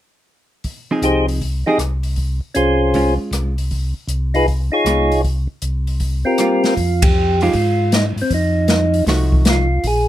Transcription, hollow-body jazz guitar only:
0, 0, Header, 1, 2, 480
1, 0, Start_track
1, 0, Key_signature, -4, "minor"
1, 0, Tempo, 382897
1, 801, Time_signature, 4, 2, 24, 8
1, 12640, End_track
2, 0, Start_track
2, 0, Title_t, "Hollow-body jazz guitar"
2, 0, Program_c, 0, 26
2, 1141, Note_on_c, 0, 53, 47
2, 1142, Note_on_c, 0, 60, 47
2, 1149, Note_on_c, 0, 63, 49
2, 1156, Note_on_c, 0, 68, 53
2, 1741, Note_off_c, 0, 53, 0
2, 1742, Note_off_c, 0, 60, 0
2, 1745, Note_off_c, 0, 63, 0
2, 1749, Note_off_c, 0, 68, 0
2, 2096, Note_on_c, 0, 53, 45
2, 2103, Note_on_c, 0, 60, 56
2, 2111, Note_on_c, 0, 63, 49
2, 2119, Note_on_c, 0, 68, 56
2, 2235, Note_off_c, 0, 53, 0
2, 2239, Note_off_c, 0, 60, 0
2, 2243, Note_off_c, 0, 63, 0
2, 2247, Note_off_c, 0, 68, 0
2, 3697, Note_on_c, 0, 56, 46
2, 3708, Note_on_c, 0, 61, 51
2, 3711, Note_on_c, 0, 65, 53
2, 4427, Note_off_c, 0, 56, 0
2, 4432, Note_off_c, 0, 61, 0
2, 4433, Note_off_c, 0, 65, 0
2, 6104, Note_on_c, 0, 56, 48
2, 6105, Note_on_c, 0, 59, 48
2, 6123, Note_on_c, 0, 65, 52
2, 6382, Note_off_c, 0, 56, 0
2, 6383, Note_off_c, 0, 59, 0
2, 6392, Note_off_c, 0, 65, 0
2, 8023, Note_on_c, 0, 55, 39
2, 8027, Note_on_c, 0, 58, 50
2, 8032, Note_on_c, 0, 65, 45
2, 8301, Note_off_c, 0, 55, 0
2, 8304, Note_off_c, 0, 58, 0
2, 8306, Note_off_c, 0, 65, 0
2, 9301, Note_on_c, 0, 53, 52
2, 9306, Note_on_c, 0, 56, 54
2, 9310, Note_on_c, 0, 63, 54
2, 9313, Note_on_c, 0, 67, 52
2, 9440, Note_off_c, 0, 53, 0
2, 9442, Note_off_c, 0, 56, 0
2, 9444, Note_off_c, 0, 63, 0
2, 9446, Note_off_c, 0, 67, 0
2, 11385, Note_on_c, 0, 53, 49
2, 11386, Note_on_c, 0, 57, 58
2, 11393, Note_on_c, 0, 63, 51
2, 11395, Note_on_c, 0, 66, 54
2, 12108, Note_off_c, 0, 53, 0
2, 12108, Note_off_c, 0, 57, 0
2, 12112, Note_off_c, 0, 63, 0
2, 12113, Note_off_c, 0, 66, 0
2, 12640, End_track
0, 0, End_of_file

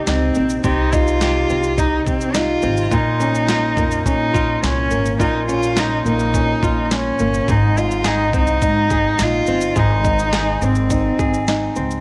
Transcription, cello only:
0, 0, Header, 1, 2, 480
1, 0, Start_track
1, 0, Key_signature, -4, "major"
1, 0, Tempo, 570885
1, 534, Time_signature, 4, 2, 24, 8
1, 10094, End_track
2, 0, Start_track
2, 0, Title_t, "Cello"
2, 0, Program_c, 0, 42
2, 62, Note_on_c, 0, 60, 93
2, 504, Note_off_c, 0, 60, 0
2, 551, Note_on_c, 0, 63, 98
2, 789, Note_on_c, 0, 65, 105
2, 802, Note_off_c, 0, 63, 0
2, 1506, Note_on_c, 0, 63, 92
2, 1519, Note_off_c, 0, 65, 0
2, 1738, Note_off_c, 0, 63, 0
2, 1758, Note_on_c, 0, 60, 93
2, 1995, Note_on_c, 0, 65, 101
2, 2008, Note_off_c, 0, 60, 0
2, 2469, Note_on_c, 0, 63, 98
2, 2482, Note_off_c, 0, 65, 0
2, 3418, Note_off_c, 0, 63, 0
2, 3424, Note_on_c, 0, 63, 98
2, 3862, Note_off_c, 0, 63, 0
2, 3915, Note_on_c, 0, 61, 97
2, 4348, Note_off_c, 0, 61, 0
2, 4389, Note_on_c, 0, 63, 84
2, 4602, Note_off_c, 0, 63, 0
2, 4623, Note_on_c, 0, 65, 99
2, 4868, Note_on_c, 0, 63, 102
2, 4881, Note_off_c, 0, 65, 0
2, 5097, Note_off_c, 0, 63, 0
2, 5111, Note_on_c, 0, 63, 102
2, 5758, Note_off_c, 0, 63, 0
2, 5758, Note_on_c, 0, 63, 62
2, 5835, Note_on_c, 0, 61, 101
2, 5848, Note_off_c, 0, 63, 0
2, 6311, Note_on_c, 0, 63, 99
2, 6323, Note_off_c, 0, 61, 0
2, 6545, Note_on_c, 0, 65, 93
2, 6558, Note_off_c, 0, 63, 0
2, 6790, Note_on_c, 0, 63, 104
2, 6802, Note_off_c, 0, 65, 0
2, 7018, Note_off_c, 0, 63, 0
2, 7038, Note_on_c, 0, 63, 101
2, 7760, Note_on_c, 0, 65, 105
2, 7772, Note_off_c, 0, 63, 0
2, 8233, Note_on_c, 0, 63, 99
2, 8245, Note_off_c, 0, 65, 0
2, 8955, Note_on_c, 0, 60, 85
2, 8967, Note_off_c, 0, 63, 0
2, 9904, Note_off_c, 0, 60, 0
2, 10094, End_track
0, 0, End_of_file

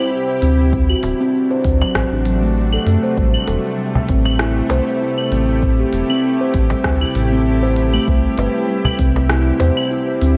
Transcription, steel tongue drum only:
0, 0, Header, 1, 2, 480
1, 0, Start_track
1, 0, Tempo, 612245
1, 570, Time_signature, 4, 2, 24, 8
1, 8131, End_track
2, 0, Start_track
2, 0, Title_t, "Steel tongue drum"
2, 0, Program_c, 0, 114
2, 88, Note_on_c, 0, 64, 76
2, 318, Note_off_c, 0, 64, 0
2, 332, Note_on_c, 0, 60, 93
2, 571, Note_off_c, 0, 60, 0
2, 704, Note_on_c, 0, 66, 75
2, 930, Note_off_c, 0, 66, 0
2, 944, Note_on_c, 0, 60, 101
2, 1005, Note_off_c, 0, 60, 0
2, 1182, Note_on_c, 0, 72, 95
2, 1409, Note_off_c, 0, 72, 0
2, 1423, Note_on_c, 0, 54, 71
2, 1525, Note_off_c, 0, 54, 0
2, 1665, Note_on_c, 0, 62, 70
2, 1725, Note_off_c, 0, 62, 0
2, 1771, Note_on_c, 0, 54, 73
2, 1890, Note_off_c, 0, 54, 0
2, 1902, Note_on_c, 0, 57, 94
2, 1963, Note_off_c, 0, 57, 0
2, 2143, Note_on_c, 0, 69, 72
2, 2245, Note_off_c, 0, 69, 0
2, 2380, Note_on_c, 0, 72, 70
2, 2483, Note_off_c, 0, 72, 0
2, 2484, Note_on_c, 0, 55, 83
2, 2716, Note_off_c, 0, 55, 0
2, 2725, Note_on_c, 0, 69, 67
2, 2853, Note_off_c, 0, 69, 0
2, 2965, Note_on_c, 0, 55, 76
2, 3094, Note_off_c, 0, 55, 0
2, 3209, Note_on_c, 0, 60, 85
2, 3438, Note_off_c, 0, 60, 0
2, 3449, Note_on_c, 0, 64, 93
2, 3575, Note_off_c, 0, 64, 0
2, 3691, Note_on_c, 0, 72, 100
2, 3817, Note_off_c, 0, 72, 0
2, 3929, Note_on_c, 0, 64, 78
2, 4158, Note_off_c, 0, 64, 0
2, 4171, Note_on_c, 0, 60, 93
2, 4529, Note_off_c, 0, 60, 0
2, 4542, Note_on_c, 0, 67, 72
2, 4769, Note_off_c, 0, 67, 0
2, 4780, Note_on_c, 0, 60, 103
2, 4842, Note_off_c, 0, 60, 0
2, 5024, Note_on_c, 0, 72, 92
2, 5250, Note_off_c, 0, 72, 0
2, 5260, Note_on_c, 0, 55, 71
2, 5363, Note_off_c, 0, 55, 0
2, 5499, Note_on_c, 0, 64, 68
2, 5562, Note_off_c, 0, 64, 0
2, 5738, Note_on_c, 0, 60, 103
2, 5802, Note_off_c, 0, 60, 0
2, 5978, Note_on_c, 0, 72, 98
2, 6207, Note_off_c, 0, 72, 0
2, 6221, Note_on_c, 0, 57, 92
2, 6318, Note_off_c, 0, 57, 0
2, 6329, Note_on_c, 0, 55, 77
2, 6558, Note_off_c, 0, 55, 0
2, 6571, Note_on_c, 0, 71, 72
2, 6696, Note_off_c, 0, 71, 0
2, 6808, Note_on_c, 0, 55, 72
2, 6935, Note_off_c, 0, 55, 0
2, 7051, Note_on_c, 0, 60, 88
2, 7280, Note_off_c, 0, 60, 0
2, 7286, Note_on_c, 0, 64, 95
2, 7414, Note_off_c, 0, 64, 0
2, 7529, Note_on_c, 0, 72, 96
2, 7655, Note_off_c, 0, 72, 0
2, 7768, Note_on_c, 0, 64, 79
2, 7998, Note_off_c, 0, 64, 0
2, 8009, Note_on_c, 0, 60, 94
2, 8131, Note_off_c, 0, 60, 0
2, 8131, End_track
0, 0, End_of_file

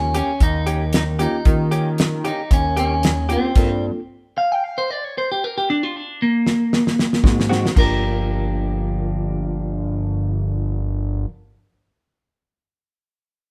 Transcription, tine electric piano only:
0, 0, Header, 1, 2, 480
1, 0, Start_track
1, 0, Key_signature, -2, "minor"
1, 0, Tempo, 525855
1, 1330, Time_signature, 4, 2, 24, 8
1, 12325, End_track
2, 0, Start_track
2, 0, Title_t, "Tine electric piano"
2, 0, Program_c, 0, 4
2, 0, Note_on_c, 0, 58, 66
2, 0, Note_on_c, 0, 61, 57
2, 0, Note_on_c, 0, 65, 61
2, 0, Note_on_c, 0, 67, 74
2, 135, Note_off_c, 0, 61, 0
2, 137, Note_off_c, 0, 58, 0
2, 138, Note_off_c, 0, 65, 0
2, 140, Note_off_c, 0, 67, 0
2, 1091, Note_on_c, 0, 58, 76
2, 1091, Note_on_c, 0, 61, 73
2, 1095, Note_on_c, 0, 65, 67
2, 1095, Note_on_c, 0, 67, 84
2, 1275, Note_off_c, 0, 58, 0
2, 1275, Note_off_c, 0, 61, 0
2, 1277, Note_off_c, 0, 65, 0
2, 1277, Note_off_c, 0, 67, 0
2, 1332, Note_on_c, 0, 58, 63
2, 1336, Note_on_c, 0, 61, 60
2, 1337, Note_on_c, 0, 65, 60
2, 1341, Note_on_c, 0, 67, 77
2, 2058, Note_off_c, 0, 58, 0
2, 2060, Note_off_c, 0, 61, 0
2, 2061, Note_off_c, 0, 65, 0
2, 2063, Note_off_c, 0, 67, 0
2, 3009, Note_on_c, 0, 58, 77
2, 3012, Note_on_c, 0, 61, 69
2, 3012, Note_on_c, 0, 65, 66
2, 3016, Note_on_c, 0, 67, 77
2, 3195, Note_off_c, 0, 58, 0
2, 3196, Note_off_c, 0, 61, 0
2, 3196, Note_off_c, 0, 65, 0
2, 3198, Note_off_c, 0, 67, 0
2, 3251, Note_on_c, 0, 58, 75
2, 3252, Note_on_c, 0, 62, 66
2, 3253, Note_on_c, 0, 65, 66
2, 3258, Note_on_c, 0, 69, 81
2, 3641, Note_off_c, 0, 58, 0
2, 3641, Note_off_c, 0, 62, 0
2, 3642, Note_off_c, 0, 65, 0
2, 3644, Note_off_c, 0, 69, 0
2, 6600, Note_on_c, 0, 58, 80
2, 6602, Note_on_c, 0, 60, 75
2, 6608, Note_on_c, 0, 63, 68
2, 6608, Note_on_c, 0, 66, 79
2, 6801, Note_off_c, 0, 58, 0
2, 6802, Note_off_c, 0, 60, 0
2, 6805, Note_off_c, 0, 63, 0
2, 6805, Note_off_c, 0, 66, 0
2, 6843, Note_on_c, 0, 58, 77
2, 6847, Note_on_c, 0, 60, 80
2, 6850, Note_on_c, 0, 66, 90
2, 6851, Note_on_c, 0, 63, 81
2, 7032, Note_off_c, 0, 58, 0
2, 7035, Note_off_c, 0, 60, 0
2, 7036, Note_off_c, 0, 66, 0
2, 7037, Note_off_c, 0, 63, 0
2, 7075, Note_on_c, 0, 58, 70
2, 7088, Note_on_c, 0, 62, 75
2, 7101, Note_on_c, 0, 65, 68
2, 7109, Note_on_c, 0, 70, 77
2, 10265, Note_off_c, 0, 58, 0
2, 10277, Note_off_c, 0, 62, 0
2, 10291, Note_off_c, 0, 65, 0
2, 10298, Note_off_c, 0, 70, 0
2, 12325, End_track
0, 0, End_of_file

